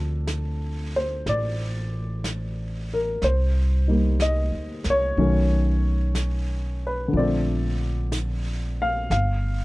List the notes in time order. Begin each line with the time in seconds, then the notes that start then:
Already playing: D2 F3 C4 D4 A4
0.27 brush sweep, snare, hi-hat pedal
0.96 C5
1.26 A1 D5, brush sweep, snare
2.24 brush sweep, snare, hi-hat pedal
2.94 A#4
3.22 C2 C5, brush sweep, snare
3.88 G3 A#3 D#4
4.20 D#5, brush sweep, snare, hi-hat pedal
4.52 D2
4.84 C2, snare
4.90 C#5
5.17 B1 D#3 F#3 A3 C#4, brush sweep
6.15 brush sweep, snare, hi-hat pedal
6.87 B4
7.08 D3
7.13 A#1 F3 A3, brush sweep
7.17 C4 D5
8.12 brush sweep, snare, hi-hat pedal
8.82 F5
9.10 G1 F5, brush sweep, snare